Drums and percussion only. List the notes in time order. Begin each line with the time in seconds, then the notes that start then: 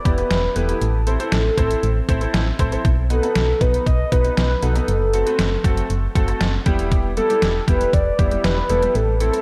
0.05 kick, closed hi-hat
0.18 closed hi-hat
0.31 snare, closed hi-hat
0.56 closed hi-hat
0.69 closed hi-hat
0.82 closed hi-hat
1.07 closed hi-hat
1.20 closed hi-hat
1.32 snare, closed hi-hat
1.58 kick, closed hi-hat
1.71 closed hi-hat
1.83 closed hi-hat
2.09 kick, closed hi-hat
2.21 closed hi-hat
2.34 snare, closed hi-hat
2.59 kick, closed hi-hat
2.72 closed hi-hat
2.85 kick, closed hi-hat
3.10 closed hi-hat
3.23 closed hi-hat
3.35 snare, closed hi-hat
3.61 kick, closed hi-hat
3.74 closed hi-hat
3.87 kick, closed hi-hat
4.12 kick, closed hi-hat
4.25 closed hi-hat
4.37 snare, closed hi-hat
4.63 closed hi-hat
4.76 closed hi-hat
4.88 closed hi-hat
5.14 closed hi-hat
5.27 closed hi-hat
5.39 snare, closed hi-hat
5.64 kick, closed hi-hat
5.77 closed hi-hat
5.90 closed hi-hat
6.16 kick, closed hi-hat
6.28 closed hi-hat
6.41 snare, closed hi-hat
6.66 kick, closed hi-hat
6.79 closed hi-hat
6.92 kick, closed hi-hat
7.17 closed hi-hat
7.30 closed hi-hat
7.42 snare, closed hi-hat
7.68 kick, closed hi-hat
7.81 closed hi-hat
7.93 kick, closed hi-hat
8.19 kick, closed hi-hat
8.31 closed hi-hat
8.44 snare, closed hi-hat
8.69 closed hi-hat
8.82 closed hi-hat
8.95 closed hi-hat
9.20 closed hi-hat
9.34 closed hi-hat